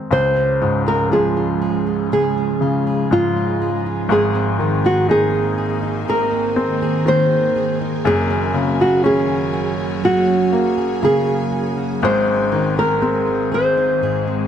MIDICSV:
0, 0, Header, 1, 5, 480
1, 0, Start_track
1, 0, Key_signature, -5, "major"
1, 0, Tempo, 993377
1, 53, Time_signature, 4, 2, 24, 8
1, 6994, End_track
2, 0, Start_track
2, 0, Title_t, "Nylon-string guitar"
2, 0, Program_c, 0, 24
2, 60, Note_on_c, 0, 72, 94
2, 423, Note_off_c, 0, 72, 0
2, 425, Note_on_c, 0, 70, 87
2, 544, Note_off_c, 0, 70, 0
2, 546, Note_on_c, 0, 68, 85
2, 1024, Note_off_c, 0, 68, 0
2, 1030, Note_on_c, 0, 68, 85
2, 1508, Note_off_c, 0, 68, 0
2, 1510, Note_on_c, 0, 65, 88
2, 1846, Note_off_c, 0, 65, 0
2, 1991, Note_on_c, 0, 68, 88
2, 2345, Note_off_c, 0, 68, 0
2, 2347, Note_on_c, 0, 66, 81
2, 2466, Note_off_c, 0, 66, 0
2, 2468, Note_on_c, 0, 68, 88
2, 2943, Note_off_c, 0, 68, 0
2, 2945, Note_on_c, 0, 70, 89
2, 3398, Note_off_c, 0, 70, 0
2, 3422, Note_on_c, 0, 72, 98
2, 3756, Note_off_c, 0, 72, 0
2, 3899, Note_on_c, 0, 68, 93
2, 4256, Note_off_c, 0, 68, 0
2, 4258, Note_on_c, 0, 66, 81
2, 4364, Note_off_c, 0, 66, 0
2, 4376, Note_on_c, 0, 68, 85
2, 4854, Note_off_c, 0, 68, 0
2, 4856, Note_on_c, 0, 66, 85
2, 5335, Note_off_c, 0, 66, 0
2, 5337, Note_on_c, 0, 68, 92
2, 5673, Note_off_c, 0, 68, 0
2, 5821, Note_on_c, 0, 72, 94
2, 6177, Note_off_c, 0, 72, 0
2, 6179, Note_on_c, 0, 70, 86
2, 6542, Note_off_c, 0, 70, 0
2, 6543, Note_on_c, 0, 72, 83
2, 6994, Note_off_c, 0, 72, 0
2, 6994, End_track
3, 0, Start_track
3, 0, Title_t, "Steel-string acoustic guitar"
3, 0, Program_c, 1, 25
3, 56, Note_on_c, 1, 49, 76
3, 58, Note_on_c, 1, 68, 58
3, 175, Note_on_c, 1, 61, 52
3, 299, Note_on_c, 1, 65, 55
3, 417, Note_off_c, 1, 68, 0
3, 419, Note_on_c, 1, 68, 57
3, 540, Note_on_c, 1, 56, 62
3, 655, Note_off_c, 1, 65, 0
3, 661, Note_on_c, 1, 65, 51
3, 779, Note_off_c, 1, 68, 0
3, 781, Note_on_c, 1, 68, 62
3, 897, Note_off_c, 1, 65, 0
3, 902, Note_on_c, 1, 65, 51
3, 1019, Note_off_c, 1, 49, 0
3, 1025, Note_on_c, 1, 49, 71
3, 1027, Note_off_c, 1, 68, 0
3, 1029, Note_on_c, 1, 68, 61
3, 1142, Note_off_c, 1, 61, 0
3, 1147, Note_on_c, 1, 61, 50
3, 1260, Note_off_c, 1, 65, 0
3, 1265, Note_on_c, 1, 65, 55
3, 1384, Note_off_c, 1, 68, 0
3, 1386, Note_on_c, 1, 68, 65
3, 1506, Note_off_c, 1, 56, 0
3, 1508, Note_on_c, 1, 56, 69
3, 1621, Note_off_c, 1, 65, 0
3, 1627, Note_on_c, 1, 65, 55
3, 1746, Note_off_c, 1, 68, 0
3, 1748, Note_on_c, 1, 68, 60
3, 1860, Note_off_c, 1, 65, 0
3, 1866, Note_on_c, 1, 65, 57
3, 1981, Note_on_c, 1, 44, 80
3, 1984, Note_off_c, 1, 68, 0
3, 1986, Note_on_c, 1, 68, 67
3, 2031, Note_off_c, 1, 49, 0
3, 2031, Note_off_c, 1, 65, 0
3, 2032, Note_off_c, 1, 61, 0
3, 2103, Note_on_c, 1, 60, 59
3, 2224, Note_on_c, 1, 63, 58
3, 2339, Note_off_c, 1, 68, 0
3, 2341, Note_on_c, 1, 68, 62
3, 2459, Note_off_c, 1, 56, 0
3, 2461, Note_on_c, 1, 58, 64
3, 2574, Note_off_c, 1, 63, 0
3, 2580, Note_on_c, 1, 63, 57
3, 2694, Note_off_c, 1, 68, 0
3, 2696, Note_on_c, 1, 68, 63
3, 2810, Note_off_c, 1, 63, 0
3, 2816, Note_on_c, 1, 63, 57
3, 2933, Note_off_c, 1, 44, 0
3, 2939, Note_on_c, 1, 44, 77
3, 2940, Note_off_c, 1, 68, 0
3, 2942, Note_on_c, 1, 68, 67
3, 3052, Note_off_c, 1, 60, 0
3, 3058, Note_on_c, 1, 60, 57
3, 3169, Note_off_c, 1, 63, 0
3, 3175, Note_on_c, 1, 63, 57
3, 3295, Note_off_c, 1, 68, 0
3, 3297, Note_on_c, 1, 68, 69
3, 3415, Note_off_c, 1, 58, 0
3, 3417, Note_on_c, 1, 58, 70
3, 3531, Note_off_c, 1, 63, 0
3, 3537, Note_on_c, 1, 63, 59
3, 3652, Note_off_c, 1, 68, 0
3, 3653, Note_on_c, 1, 68, 67
3, 3769, Note_off_c, 1, 63, 0
3, 3775, Note_on_c, 1, 63, 59
3, 3892, Note_on_c, 1, 54, 85
3, 3893, Note_off_c, 1, 68, 0
3, 3895, Note_on_c, 1, 68, 69
3, 3939, Note_off_c, 1, 44, 0
3, 3939, Note_off_c, 1, 60, 0
3, 3940, Note_off_c, 1, 63, 0
3, 4012, Note_on_c, 1, 61, 58
3, 4129, Note_on_c, 1, 66, 58
3, 4249, Note_off_c, 1, 68, 0
3, 4251, Note_on_c, 1, 68, 63
3, 4266, Note_off_c, 1, 58, 0
3, 4370, Note_on_c, 1, 58, 66
3, 4481, Note_off_c, 1, 66, 0
3, 4487, Note_on_c, 1, 66, 59
3, 4604, Note_off_c, 1, 68, 0
3, 4606, Note_on_c, 1, 68, 65
3, 4722, Note_off_c, 1, 66, 0
3, 4728, Note_on_c, 1, 66, 55
3, 4843, Note_off_c, 1, 54, 0
3, 4848, Note_on_c, 1, 54, 78
3, 4849, Note_off_c, 1, 68, 0
3, 4851, Note_on_c, 1, 68, 65
3, 4960, Note_off_c, 1, 61, 0
3, 4965, Note_on_c, 1, 61, 58
3, 5081, Note_off_c, 1, 66, 0
3, 5087, Note_on_c, 1, 66, 60
3, 5205, Note_off_c, 1, 68, 0
3, 5207, Note_on_c, 1, 68, 63
3, 5322, Note_off_c, 1, 58, 0
3, 5328, Note_on_c, 1, 58, 70
3, 5441, Note_off_c, 1, 66, 0
3, 5447, Note_on_c, 1, 66, 53
3, 5565, Note_off_c, 1, 68, 0
3, 5567, Note_on_c, 1, 68, 64
3, 5685, Note_off_c, 1, 66, 0
3, 5690, Note_on_c, 1, 66, 56
3, 5809, Note_on_c, 1, 44, 75
3, 5810, Note_off_c, 1, 68, 0
3, 5812, Note_on_c, 1, 68, 68
3, 5855, Note_off_c, 1, 61, 0
3, 5856, Note_off_c, 1, 54, 0
3, 5856, Note_off_c, 1, 58, 0
3, 5857, Note_off_c, 1, 66, 0
3, 5929, Note_on_c, 1, 60, 56
3, 6049, Note_on_c, 1, 63, 56
3, 6168, Note_off_c, 1, 68, 0
3, 6170, Note_on_c, 1, 68, 58
3, 6291, Note_on_c, 1, 56, 64
3, 6410, Note_off_c, 1, 63, 0
3, 6412, Note_on_c, 1, 63, 54
3, 6530, Note_off_c, 1, 68, 0
3, 6532, Note_on_c, 1, 68, 58
3, 6654, Note_off_c, 1, 63, 0
3, 6655, Note_on_c, 1, 63, 56
3, 6772, Note_off_c, 1, 44, 0
3, 6778, Note_on_c, 1, 44, 75
3, 6779, Note_off_c, 1, 68, 0
3, 6781, Note_on_c, 1, 68, 63
3, 6896, Note_off_c, 1, 60, 0
3, 6897, Note_on_c, 1, 60, 53
3, 6994, Note_off_c, 1, 44, 0
3, 6994, Note_off_c, 1, 56, 0
3, 6994, Note_off_c, 1, 60, 0
3, 6994, Note_off_c, 1, 63, 0
3, 6994, Note_off_c, 1, 68, 0
3, 6994, End_track
4, 0, Start_track
4, 0, Title_t, "Ambient pad"
4, 0, Program_c, 2, 92
4, 55, Note_on_c, 2, 56, 74
4, 55, Note_on_c, 2, 68, 89
4, 56, Note_on_c, 2, 53, 75
4, 56, Note_on_c, 2, 61, 72
4, 1013, Note_off_c, 2, 61, 0
4, 1026, Note_on_c, 2, 63, 74
4, 1963, Note_off_c, 2, 53, 0
4, 1963, Note_off_c, 2, 56, 0
4, 1974, Note_off_c, 2, 63, 0
4, 1985, Note_on_c, 2, 51, 83
4, 1986, Note_on_c, 2, 58, 72
4, 1988, Note_on_c, 2, 60, 69
4, 3873, Note_off_c, 2, 51, 0
4, 3874, Note_off_c, 2, 60, 0
4, 3889, Note_on_c, 2, 54, 85
4, 3889, Note_on_c, 2, 61, 74
4, 5787, Note_off_c, 2, 54, 0
4, 5787, Note_off_c, 2, 61, 0
4, 5789, Note_off_c, 2, 58, 0
4, 5804, Note_on_c, 2, 60, 72
4, 5806, Note_on_c, 2, 51, 79
4, 5806, Note_on_c, 2, 56, 75
4, 6994, Note_off_c, 2, 51, 0
4, 6994, Note_off_c, 2, 56, 0
4, 6994, Note_off_c, 2, 60, 0
4, 6994, Note_off_c, 2, 68, 0
4, 6994, End_track
5, 0, Start_track
5, 0, Title_t, "Grand piano"
5, 0, Program_c, 3, 0
5, 0, Control_c, 3, 64, 127
5, 0, Note_on_c, 3, 51, 34
5, 0, Note_on_c, 3, 56, 34
5, 0, Note_on_c, 3, 60, 38
5, 51, Note_on_c, 3, 37, 59
5, 60, Note_off_c, 3, 51, 0
5, 60, Control_c, 3, 64, 0
5, 63, Note_off_c, 3, 56, 0
5, 63, Note_off_c, 3, 60, 0
5, 151, Control_c, 3, 64, 127
5, 296, Note_on_c, 3, 44, 53
5, 538, Note_on_c, 3, 53, 52
5, 1243, Note_off_c, 3, 44, 0
5, 1261, Note_on_c, 3, 49, 48
5, 1484, Note_off_c, 3, 53, 0
5, 1502, Note_on_c, 3, 44, 50
5, 1961, Note_off_c, 3, 37, 0
5, 1961, Note_off_c, 3, 49, 0
5, 1966, Note_off_c, 3, 44, 0
5, 1975, Note_on_c, 3, 44, 65
5, 1976, Note_on_c, 3, 32, 61
5, 1986, Control_c, 3, 64, 0
5, 2082, Control_c, 3, 64, 127
5, 2218, Note_on_c, 3, 51, 54
5, 2457, Note_on_c, 3, 63, 57
5, 3154, Note_off_c, 3, 51, 0
5, 3171, Note_on_c, 3, 60, 54
5, 3393, Note_off_c, 3, 63, 0
5, 3410, Note_on_c, 3, 51, 56
5, 3868, Note_off_c, 3, 32, 0
5, 3868, Note_off_c, 3, 44, 0
5, 3869, Note_off_c, 3, 60, 0
5, 3874, Note_off_c, 3, 51, 0
5, 3888, Note_on_c, 3, 30, 63
5, 3890, Note_on_c, 3, 42, 70
5, 3896, Control_c, 3, 64, 0
5, 3982, Control_c, 3, 64, 127
5, 4127, Note_on_c, 3, 49, 60
5, 4367, Note_on_c, 3, 61, 58
5, 5065, Note_off_c, 3, 49, 0
5, 5086, Note_on_c, 3, 58, 53
5, 5306, Note_off_c, 3, 61, 0
5, 5329, Note_on_c, 3, 49, 55
5, 5786, Note_off_c, 3, 30, 0
5, 5787, Note_off_c, 3, 42, 0
5, 5787, Note_off_c, 3, 58, 0
5, 5794, Note_off_c, 3, 49, 0
5, 5811, Note_on_c, 3, 32, 63
5, 5811, Note_on_c, 3, 44, 65
5, 5812, Control_c, 3, 64, 0
5, 5892, Control_c, 3, 64, 127
5, 6053, Note_on_c, 3, 51, 55
5, 6292, Note_on_c, 3, 60, 50
5, 6994, Note_off_c, 3, 32, 0
5, 6994, Note_off_c, 3, 44, 0
5, 6994, Note_off_c, 3, 51, 0
5, 6994, Note_off_c, 3, 60, 0
5, 6994, End_track
0, 0, End_of_file